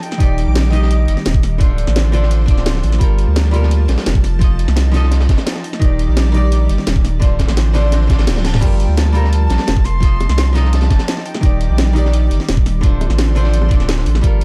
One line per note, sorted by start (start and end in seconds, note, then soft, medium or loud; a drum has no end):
0.00 1.59 G3 medium
0.00 1.58 D#4 medium
0.00 0.55 G5 loud
0.00 1.59 D6 medium
0.00 closed hi-hat medium
0.00 open hi-hat medium
0.11 snare medium
0.11 closed hi-hat soft
0.18 0.45 D#1 loud
0.18 0.69 D#3 medium
0.18 0.70 D#4 medium
0.18 0.71 G4 medium
0.18 kick loud
0.18 closed hi-hat medium
0.23 0.72 D5 loud
0.38 closed hi-hat medium
0.47 1.07 A#1 loud
0.55 snare loud
0.55 closed hi-hat medium
0.65 snare soft
0.70 1.57 D#3 medium
0.70 1.58 D#4 medium
0.70 1.59 G4 medium
0.70 1.39 D#5 medium
0.70 closed hi-hat medium
0.70 open hi-hat medium
0.75 1.60 D#5 loud
0.82 snare medium
0.91 closed hi-hat medium
1.08 1.16 G1 medium
1.08 closed hi-hat medium
1.17 snare soft
1.25 1.62 D#1 medium
1.25 snare loud
1.25 closed hi-hat medium
1.25 closed hi-hat loud
1.34 kick loud
1.43 snare soft
1.43 closed hi-hat medium
1.43 open hi-hat medium
1.58 1.86 D1 medium
1.58 2.10 D3 medium
1.58 5.60 F3 medium
1.58 2.11 D4 medium
1.58 3.00 D4 medium
1.58 2.12 F4 medium
1.58 3.00 C5 medium
1.58 kick loud
1.58 closed hi-hat medium
1.63 2.12 C5 loud
1.78 closed hi-hat medium
1.87 2.50 A1 loud
1.87 snare medium
1.96 snare loud
1.96 closed hi-hat medium
1.96 closed hi-hat loud
2.12 2.45 D3 loud
2.12 2.46 D4 medium
2.12 2.47 F4 medium
2.12 2.47 C5 loud
2.12 closed hi-hat medium
2.12 open hi-hat medium
2.23 snare soft
2.31 closed hi-hat medium
2.46 2.82 D1 medium
2.46 2.98 D3 medium
2.46 2.98 D4 medium
2.46 2.99 F4 medium
2.46 kick loud
2.46 closed hi-hat medium
2.51 3.00 D5 medium
2.57 snare soft
2.66 snare loud
2.66 closed hi-hat medium
2.75 snare soft
2.83 2.99 A1 medium
2.83 closed hi-hat medium
2.83 open hi-hat medium
2.92 snare soft
2.92 closed hi-hat soft
2.98 3.26 G1 loud
2.98 3.50 G3 medium
2.98 4.23 A#3 medium
2.98 3.51 F4 medium
2.98 3.52 A4 medium
2.98 5.62 A5 medium
2.98 kick loud
2.98 closed hi-hat medium
3.03 3.53 A#4 loud
3.18 closed hi-hat medium
3.28 3.87 D2 loud
3.36 snare loud
3.36 closed hi-hat medium
3.45 snare soft
3.51 4.22 G3 medium
3.51 4.22 F4 medium
3.51 4.23 A4 medium
3.51 closed hi-hat medium
3.51 open hi-hat medium
3.56 4.24 A#4 loud
3.63 snare medium
3.71 closed hi-hat medium
3.88 3.97 A#1 medium
3.88 snare loud
3.88 closed hi-hat medium
3.98 snare soft
3.98 snare loud
3.98 closed hi-hat medium
4.06 4.67 F1 medium
4.06 snare loud
4.06 closed hi-hat medium
4.15 kick loud
4.24 7.19 D#4 medium
4.24 snare soft
4.24 closed hi-hat medium
4.24 open hi-hat medium
4.39 4.90 F3 medium
4.39 4.92 F4 medium
4.39 4.92 A4 medium
4.39 kick loud
4.39 closed hi-hat medium
4.44 4.93 D#5 medium
4.59 closed hi-hat medium
4.68 5.28 C2 loud
4.68 snare medium
4.76 snare loud
4.76 closed hi-hat medium
4.92 5.62 F3 loud
4.92 5.63 F4 medium
4.92 5.64 A4 medium
4.92 snare loud
4.92 closed hi-hat medium
4.92 open hi-hat medium
4.96 5.64 D#5 loud
5.03 snare soft
5.11 snare loud
5.11 closed hi-hat medium
5.20 snare medium
5.20 closed hi-hat medium
5.29 5.37 F1 loud
5.29 kick loud
5.29 snare loud
5.29 closed hi-hat medium
5.37 snare loud
5.37 snare soft
5.37 closed hi-hat medium
5.46 snare loud
5.46 closed hi-hat loud
5.46 closed hi-hat medium
5.55 snare medium
5.55 snare soft
5.64 7.21 G3 medium
5.64 7.21 D5 medium
5.64 closed hi-hat medium
5.64 open hi-hat medium
5.73 snare soft
5.73 closed hi-hat soft
5.79 6.07 D#1 loud
5.79 6.31 D#3 medium
5.79 6.32 D#4 medium
5.79 6.33 G4 medium
5.79 kick loud
5.79 closed hi-hat medium
5.79 closed hi-hat loud
5.84 6.34 D5 medium
5.99 closed hi-hat medium
6.08 6.68 A#1 loud
6.17 snare loud
6.17 closed hi-hat medium
6.17 closed hi-hat loud
6.25 snare soft
6.32 7.19 D#3 medium
6.32 7.20 D#4 medium
6.32 7.20 G4 medium
6.32 open hi-hat medium
6.37 7.21 D5 loud
6.52 closed hi-hat loud
6.52 closed hi-hat medium
6.69 6.77 G1 medium
6.69 closed hi-hat medium
6.78 snare soft
6.87 7.21 D#1 medium
6.87 snare loud
6.87 closed hi-hat medium
6.87 closed hi-hat loud
6.96 kick loud
7.05 snare soft
7.05 closed hi-hat medium
7.05 open hi-hat medium
7.20 7.47 D1 medium
7.20 7.71 D3 medium
7.20 11.22 F3 medium
7.20 7.72 D4 medium
7.20 8.61 D4 medium
7.20 7.73 F4 medium
7.20 8.61 C5 medium
7.20 kick loud
7.20 closed hi-hat loud
7.20 closed hi-hat medium
7.24 7.74 C5 medium
7.39 kick medium
7.39 snare loud
7.39 closed hi-hat medium
7.48 8.08 A1 loud
7.48 snare loud
7.48 snare medium
7.48 closed hi-hat medium
7.57 snare loud
7.57 closed hi-hat medium
7.73 8.06 D3 medium
7.73 8.08 D4 medium
7.73 8.08 F4 medium
7.73 8.09 C5 loud
7.73 snare loud
7.73 closed hi-hat medium
7.73 open hi-hat medium
7.83 snare soft
7.92 snare loud
7.92 closed hi-hat medium
7.92 reverse cymbal medium
8.01 snare soft
8.07 8.18 A1 loud
8.07 8.59 D3 medium
8.07 8.60 D4 medium
8.07 8.60 F4 medium
8.07 kick loud
8.07 snare loud
8.07 closed hi-hat medium
8.12 8.62 D5 medium
8.19 8.29 A1 loud
8.19 snare loud
8.19 snare soft
8.19 closed hi-hat medium
8.27 8.61 D1 loud
8.27 snare loud
8.27 closed hi-hat loud
8.27 closed hi-hat medium
8.36 snare soft
8.36 snare loud
8.36 closed hi-hat medium
8.36 high tom medium
8.44 8.64 A5 medium
8.44 snare loud
8.44 snare medium
8.44 closed hi-hat medium
8.44 open hi-hat medium
8.54 snare loud
8.54 snare soft
8.54 closed hi-hat medium
8.54 mid tom medium
8.60 8.87 G1 loud
8.60 9.11 G3 medium
8.60 9.84 A#3 medium
8.60 9.13 F4 medium
8.60 9.13 A4 medium
8.60 8.80 G5 medium
8.60 11.23 A5 medium
8.60 kick loud
8.60 closed hi-hat medium
8.60 crash medium
8.65 9.14 A#4 medium
8.80 8.99 G5 medium
8.80 closed hi-hat medium
8.88 9.49 D2 loud
8.97 9.15 A5 loud
8.97 snare loud
8.97 closed hi-hat medium
8.97 closed hi-hat loud
9.07 snare soft
9.13 9.83 G3 medium
9.13 9.84 F4 medium
9.13 9.85 A4 medium
9.13 9.31 A#5 loud
9.13 closed hi-hat medium
9.13 open hi-hat medium
9.17 9.85 A#4 loud
9.24 snare soft
9.32 9.87 A5 loud
9.32 closed hi-hat loud
9.50 9.58 A#1 medium
9.50 snare loud
9.50 closed hi-hat medium
9.58 snare loud
9.58 snare soft
9.58 closed hi-hat medium
9.67 10.28 F1 medium
9.67 snare loud
9.67 closed hi-hat medium
9.67 closed hi-hat loud
9.77 kick loud
9.84 12.80 D#4 medium
9.84 10.57 C6 loud
9.84 snare soft
9.84 closed hi-hat medium
9.84 open hi-hat medium
10.00 10.51 F3 medium
10.00 10.53 F4 medium
10.00 10.54 A4 medium
10.00 kick loud
10.00 closed hi-hat loud
10.05 10.54 D#5 loud
10.20 closed hi-hat medium
10.20 high bongo medium
10.29 10.89 C2 loud
10.29 snare medium
10.38 snare loud
10.38 closed hi-hat medium
10.38 closed hi-hat loud
10.53 11.23 F3 loud
10.53 11.24 F4 medium
10.53 11.25 A4 medium
10.53 10.74 A#5 loud
10.53 snare loud
10.53 closed hi-hat medium
10.53 open hi-hat medium
10.58 11.26 D#5 loud
10.65 snare medium
10.73 11.27 A5 loud
10.73 snare loud
10.73 closed hi-hat medium
10.73 closed hi-hat loud
10.81 snare loud
10.81 closed hi-hat medium
10.81 high bongo medium
10.90 10.99 F1 loud
10.90 kick loud
10.90 snare loud
10.90 closed hi-hat medium
10.99 snare loud
10.99 snare soft
10.99 closed hi-hat medium
11.08 snare loud
11.08 closed hi-hat medium
11.08 closed hi-hat loud
11.17 snare soft
11.26 12.82 G3 medium
11.26 12.82 D5 medium
11.26 12.31 G5 medium
11.26 closed hi-hat medium
11.26 open hi-hat medium
11.34 snare soft
11.34 closed hi-hat soft
11.34 high bongo medium
11.41 11.68 D#1 loud
11.41 11.92 D#3 medium
11.41 11.93 D#4 medium
11.41 11.94 G4 medium
11.41 kick loud
11.41 closed hi-hat medium
11.45 11.95 D5 loud
11.61 closed hi-hat medium
11.70 12.30 A#1 loud
11.78 snare loud
11.78 closed hi-hat medium
11.87 snare soft
11.93 12.80 D#3 medium
11.93 12.81 D#4 medium
11.93 12.82 G4 medium
11.93 closed hi-hat medium
11.93 open hi-hat medium
11.98 12.83 D5 loud
12.05 snare medium
12.13 closed hi-hat medium
12.31 12.39 G1 medium
12.31 closed hi-hat medium
12.40 snare soft
12.49 12.82 D#1 medium
12.49 snare loud
12.49 closed hi-hat loud
12.49 closed hi-hat medium
12.57 kick loud
12.66 snare soft
12.66 closed hi-hat medium
12.66 open hi-hat medium
12.81 13.09 D1 medium
12.81 13.33 D3 medium
12.81 14.22 F3 medium
12.81 13.34 D4 medium
12.81 14.22 D4 medium
12.81 13.34 F4 medium
12.81 14.22 C5 medium
12.81 kick loud
12.81 closed hi-hat medium
12.86 13.35 C5 loud
13.01 closed hi-hat medium
13.01 high bongo medium
13.10 13.73 A1 loud
13.10 snare medium
13.18 snare loud
13.18 closed hi-hat loud
13.18 closed hi-hat medium
13.35 13.68 D3 medium
13.35 13.69 D4 medium
13.35 13.70 F4 medium
13.35 13.70 C5 loud
13.35 closed hi-hat medium
13.35 open hi-hat medium
13.44 snare soft
13.54 closed hi-hat medium
13.62 high bongo medium
13.69 14.05 D1 medium
13.69 14.21 D3 medium
13.69 14.21 D4 medium
13.69 14.22 F4 medium
13.69 kick loud
13.69 closed hi-hat medium
13.74 14.23 D5 medium
13.80 snare soft
13.88 snare loud
13.88 closed hi-hat medium
13.98 snare soft
13.98 snare medium
14.06 14.22 A1 medium
14.06 closed hi-hat medium
14.06 open hi-hat medium
14.15 snare soft
14.15 closed hi-hat soft
14.15 high bongo medium
14.21 14.44 G1 loud
14.21 14.44 F3 medium
14.21 14.44 G3 medium
14.21 14.44 A#3 medium
14.21 14.44 F4 medium
14.21 14.44 A4 medium
14.21 14.44 A5 medium
14.21 kick loud
14.21 closed hi-hat medium
14.26 14.44 A#4 loud
14.41 closed hi-hat medium